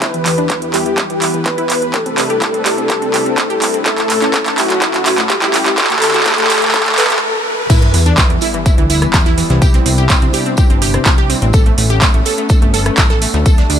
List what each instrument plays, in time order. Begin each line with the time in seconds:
0.02 analog synth pad E2 E3 B3 G4 B4, synth pluck E4, analog synth lead B4, kick, clap, closed hi-hat, riser
0.14 synth pluck E3, closed hi-hat
0.26 synth pluck E3, clap, open hi-hat
0.38 synth pluck D4, closed hi-hat
0.50 synth pluck E3, kick, clap, closed hi-hat
0.62 synth pluck E3, closed hi-hat
0.74 synth pluck E4, analog synth lead G4, clap, open hi-hat
0.86 synth pluck E3, closed hi-hat
0.98 synth pluck E4, kick, clap, closed hi-hat
1.10 synth pluck E3, closed hi-hat
1.22 synth pluck E4, clap, open hi-hat
1.34 synth pluck E3, closed hi-hat
1.46 synth pluck E3, analog synth lead B4, kick, clap, closed hi-hat
1.58 synth pluck E4, closed hi-hat
1.70 synth pluck E3, clap, open hi-hat
1.82 synth pluck E3, closed hi-hat
1.94 analog synth pad C3 G3 D4 E4, synth pluck G4, analog synth lead A4, kick, clap, closed hi-hat
2.06 synth pluck C4, closed hi-hat
2.18 synth pluck C4, clap, open hi-hat
2.30 synth pluck G4, closed hi-hat
2.42 synth pluck C4, kick, clap, closed hi-hat
2.54 synth pluck C4, closed hi-hat
2.66 synth pluck G4, clap, open hi-hat
2.78 synth pluck C4, closed hi-hat
2.90 synth pluck G4, kick, clap, closed hi-hat
3.02 synth pluck C4, closed hi-hat
3.14 synth pluck G4, clap, open hi-hat
3.26 synth pluck C4, closed hi-hat
3.38 synth pluck C4, kick, clap, closed hi-hat
3.50 synth pluck G4, closed hi-hat
3.62 synth pluck C4, clap, open hi-hat
3.74 synth pluck C4, closed hi-hat
3.86 analog synth pad A2 A3 C#4 B4, synth pluck E4, analog synth lead A4, kick, clap, closed hi-hat
3.98 synth pluck A3, clap, closed hi-hat
4.10 synth pluck A3, clap, open hi-hat
4.22 synth pluck C#4, clap, closed hi-hat
4.34 synth pluck A3, kick, clap, closed hi-hat
4.46 synth pluck A3, clap, closed hi-hat
4.58 synth pluck E4, analog synth lead F#4, clap, open hi-hat
4.70 synth pluck A3, clap, closed hi-hat
4.82 synth pluck E4, kick, clap, closed hi-hat
4.94 synth pluck A3, clap, closed hi-hat
5.06 synth pluck E4, clap, open hi-hat
5.18 synth pluck A3, clap, closed hi-hat
5.30 synth pluck A3, analog synth lead G4, kick, clap, closed hi-hat
5.42 synth pluck E4, clap, closed hi-hat
5.54 synth pluck A3, clap, open hi-hat
5.66 synth pluck A3, clap, closed hi-hat
5.78 analog synth pad D2 D3 G4 A4, synth pluck G4, analog synth lead A4, kick, clap, closed hi-hat
5.84 clap
5.90 synth pluck A3, clap, closed hi-hat
5.96 clap
6.02 synth pluck A3, clap, open hi-hat
6.08 clap
6.14 synth pluck F#4, clap, closed hi-hat
6.20 clap
6.26 synth pluck A3, kick, clap, closed hi-hat
6.32 clap
6.38 synth pluck A3, clap, closed hi-hat
6.44 clap
6.50 synth pluck G4, clap, open hi-hat
6.56 clap
6.62 synth pluck A3, clap, closed hi-hat
6.68 clap
6.74 synth pluck A4, kick, clap, closed hi-hat
6.80 clap
6.86 synth pluck A3, clap, closed hi-hat
6.92 clap
6.98 synth pluck B4, clap, open hi-hat
7.04 clap
7.10 synth pluck A3, clap, closed hi-hat
7.16 clap
7.70 analog synth pad G3 B3 E4, synth pluck E4, kick, closed hi-hat, crash, tambourine, sub drop
7.82 synth pluck E3, closed hi-hat
7.94 analog synth bass E2, synth pluck E3, open hi-hat, tambourine
8.06 synth pluck D4, closed hi-hat
8.17 synth pluck E3, kick, snare, clap, closed hi-hat, tambourine
8.30 analog synth bass E2, synth pluck E3, closed hi-hat
8.41 synth pluck E4, open hi-hat, tambourine
8.54 synth pluck E3, closed hi-hat
8.66 synth pluck E4, kick, closed hi-hat, tambourine
8.78 analog synth bass D2, synth pluck E3, closed hi-hat
8.90 synth pluck E4, open hi-hat, tambourine
9.02 synth pluck E3, cross-stick, closed hi-hat
9.14 analog synth bass E2, synth pluck E3, kick, snare, clap, closed hi-hat, tambourine
9.26 synth pluck E4, snare, closed hi-hat
9.37 synth pluck E3, snare, open hi-hat, tambourine
9.50 analog synth bass C2, synth pluck E3, snare, closed hi-hat
9.62 analog synth pad C3 D4, synth pluck G4, kick, closed hi-hat, tambourine
9.74 synth pluck C4, snare, closed hi-hat
9.86 analog synth bass C2, synth pluck C4, open hi-hat, tambourine
9.98 synth pluck G4, closed hi-hat
10.10 synth pluck C4, kick, snare, clap, closed hi-hat, tambourine
10.22 analog synth bass C2, synth pluck C4, closed hi-hat
10.33 synth pluck G4, open hi-hat, tambourine
10.46 synth pluck C4, closed hi-hat
10.57 synth pluck G4, kick, closed hi-hat, tambourine
10.70 analog synth bass G1, synth pluck C4, closed hi-hat
10.82 synth pluck G4, open hi-hat, tambourine
10.94 synth pluck C4, cross-stick, closed hi-hat
11.05 analog synth bass C2, synth pluck C4, kick, snare, clap, closed hi-hat, tambourine
11.18 synth pluck G4, closed hi-hat
11.29 synth pluck C4, snare, open hi-hat, tambourine
11.42 analog synth bass A1, synth pluck C4, closed hi-hat
11.53 analog synth pad A3 B3 C#4, synth pluck A4, kick, closed hi-hat, tambourine
11.66 synth pluck A3, closed hi-hat
11.78 analog synth bass A1, synth pluck A3, open hi-hat, tambourine
11.90 synth pluck G4, closed hi-hat
12.01 synth pluck A3, kick, snare, clap, closed hi-hat, tambourine
12.14 analog synth bass A1, synth pluck A3, closed hi-hat
12.25 synth pluck A4, open hi-hat, tambourine
12.38 synth pluck A3, closed hi-hat
12.49 synth pluck A4, kick, closed hi-hat, tambourine
12.62 analog synth bass G1, synth pluck A3, closed hi-hat
12.74 synth pluck A4, open hi-hat, tambourine
12.86 synth pluck A3, cross-stick, closed hi-hat
12.97 analog synth bass A1, synth pluck A3, kick, snare, clap, closed hi-hat, tambourine
13.10 synth pluck A4, snare, closed hi-hat
13.21 synth pluck A3, snare, open hi-hat, tambourine
13.34 analog synth bass D2, synth pluck A3, snare, closed hi-hat
13.46 analog synth pad G3 D4, synth pluck A4, kick, closed hi-hat, tambourine
13.58 synth pluck D4, snare, closed hi-hat
13.70 analog synth bass D2, synth pluck D4, open hi-hat, tambourine